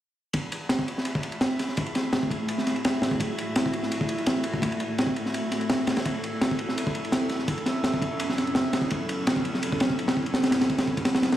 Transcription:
0.33 A3 E4 F#4 G#4 E5, kick, ride
0.52 ride
0.69 snare, ride
0.79 kick
0.88 ride
0.98 snare
1.05 ride
1.15 kick
1.23 ride
1.32 ride
1.41 snare, ride
1.59 snare, ride
1.68 snare
1.77 kick, ride
1.86 ride
1.95 snare, ride
2.13 snare, ride
2.23 kick
2.31 kick, ride
2.48 ride
2.58 snare
2.67 snare, ride
2.76 ride
2.85 snare, ride
3.02 snare, ride
3.11 kick
3.20 A4, kick, ride
3.38 ride
3.56 snare, ride
3.66 kick
3.73 ride
3.83 snare
3.92 ride
4.01 kick
4.09 ride
4.18 ride
4.26 snare, ride
4.44 ride
4.54 kick
4.62 kick, ride
4.72 ride
4.80 ride
4.98 snare, ride
5.07 kick
5.16 ride
5.26 snare
5.34 ride
5.51 snare, ride
5.61 ride
5.69 snare, ride
5.87 snare, ride
5.97 snare, ride
6.05 F#3 B3 C#4, kick, ride
6.24 ride
6.41 snare, ride
6.51 kick
6.59 ride
6.69 snare
6.78 ride
6.87 kick
6.95 ride
7.05 ride
7.12 snare, ride
7.29 snare, ride
7.39 snare
7.48 kick, ride
7.58 ride
7.66 snare, ride
7.84 snare, ride
7.94 kick
8.02 kick, ride
8.20 ride
8.29 snare
8.38 snare, ride
8.47 ride
8.55 snare, ride
8.73 snare, ride
8.82 kick
8.90 E4, kick, ride
9.09 ride
9.27 snare, ride
9.36 kick
9.45 ride
9.54 snare
9.63 ride
9.72 kick
9.80 snare, ride
9.90 kick
9.99 ride
10.08 snare, ride
10.17 kick
10.26 ride
10.34 snare, ride
10.43 snare, ride
10.51 snare, ride
10.61 snare, ride
10.69 kick, ride
10.78 snare, ride
10.87 kick
10.97 kick, ride
11.05 snare, ride
11.15 snare, ride
11.22 snare, ride
11.32 snare, ride

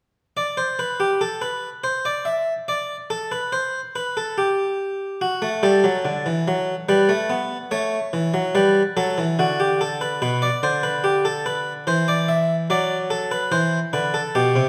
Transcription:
0.37 D5
0.57 C5
0.79 B4
1.00 G4
1.21 A4
1.42 B4
1.84 C5
2.05 D5
2.25 E5
2.68 D5
3.10 A4
3.32 B4
3.52 C5
3.96 B4
4.17 A4
4.38 G4
5.21 F#4
5.42 A3
5.63 G3 A4
5.84 F#3
6.05 D3
6.26 E3
6.48 F#3
6.89 G3 B4
7.09 A3
7.30 B3
7.71 A3 C#5
8.13 E3
8.34 F#3
8.55 G3 B4
8.97 F#3 A4
9.18 E3
9.39 D3 F#4
9.60 G4
9.81 A4
10.01 B4
10.22 B2 B4
10.42 D5
10.63 D3 C5
10.83 B4
11.04 G4
11.25 A4
11.46 B4
11.87 E3 C5
12.08 D5
12.28 E5
12.70 F#3 D5
13.10 A4
13.31 B4
13.52 E3 C5
13.93 D3 B4
14.14 A4
14.35 B2 G4
14.56 C3

